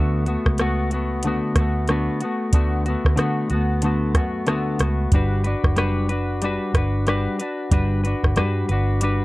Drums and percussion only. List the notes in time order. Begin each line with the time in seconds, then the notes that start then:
0.26 closed hi-hat
0.46 kick, cross-stick
0.58 cross-stick, closed hi-hat
0.91 closed hi-hat
1.23 closed hi-hat
1.55 kick, cross-stick, closed hi-hat
1.88 cross-stick, closed hi-hat
2.21 closed hi-hat
2.53 kick, closed hi-hat
2.86 closed hi-hat
3.05 kick, cross-stick
3.17 cross-stick, closed hi-hat
3.50 closed hi-hat
3.82 closed hi-hat
4.14 kick, cross-stick, closed hi-hat
4.47 cross-stick, closed hi-hat
4.79 cross-stick, closed hi-hat
5.12 kick, closed hi-hat
5.44 closed hi-hat
5.64 kick, cross-stick
5.77 cross-stick, closed hi-hat
6.09 closed hi-hat
6.42 closed hi-hat
6.74 kick, cross-stick, closed hi-hat
7.07 cross-stick, closed hi-hat
7.40 closed hi-hat
7.71 kick, closed hi-hat
8.05 closed hi-hat
8.23 kick, cross-stick
8.36 cross-stick, closed hi-hat
8.69 closed hi-hat
9.01 closed hi-hat